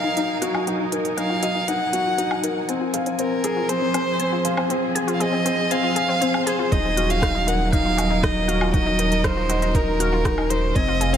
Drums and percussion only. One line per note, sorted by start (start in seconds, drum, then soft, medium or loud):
0.17 closed hi-hat soft
0.42 closed hi-hat medium
0.55 low woodblock medium
0.67 closed hi-hat soft
0.92 closed hi-hat medium
1.05 closed hi-hat soft
1.18 closed hi-hat soft
1.43 closed hi-hat medium
1.68 closed hi-hat soft
1.93 closed hi-hat medium
2.18 closed hi-hat soft
2.31 low woodblock medium
2.44 closed hi-hat medium
2.69 closed hi-hat soft
2.94 closed hi-hat medium
3.06 closed hi-hat soft
3.19 closed hi-hat soft
3.44 closed hi-hat medium
3.69 closed hi-hat soft
3.94 closed hi-hat medium
3.94 low woodblock medium
4.20 closed hi-hat soft
4.45 closed hi-hat medium
4.57 low woodblock medium
4.70 closed hi-hat soft
4.96 closed hi-hat medium
5.08 closed hi-hat soft
5.21 closed hi-hat soft
5.46 closed hi-hat medium
5.71 closed hi-hat soft
5.96 closed hi-hat medium
6.22 closed hi-hat soft
6.34 low woodblock medium
6.47 closed hi-hat medium
6.72 kick loud
6.72 closed hi-hat soft
6.97 closed hi-hat medium
7.10 closed hi-hat soft
7.22 kick loud
7.22 cross-stick medium
7.22 closed hi-hat soft
7.48 closed hi-hat medium
7.73 kick loud
7.73 closed hi-hat soft
7.98 closed hi-hat medium
7.98 low woodblock medium
8.23 kick loud
8.23 cross-stick loud
8.23 closed hi-hat soft
8.49 closed hi-hat medium
8.61 low woodblock medium
8.74 kick loud
8.74 closed hi-hat soft
8.99 closed hi-hat medium
9.12 closed hi-hat soft
9.24 kick loud
9.24 cross-stick loud
9.24 closed hi-hat soft
9.50 closed hi-hat medium
9.62 closed hi-hat soft
9.74 kick loud
9.74 closed hi-hat soft
10.00 closed hi-hat medium
10.25 kick loud
10.25 cross-stick loud
10.25 closed hi-hat soft
10.38 low woodblock medium
10.50 closed hi-hat medium
10.75 kick loud
10.75 closed hi-hat soft
11.01 closed hi-hat medium
11.14 closed hi-hat soft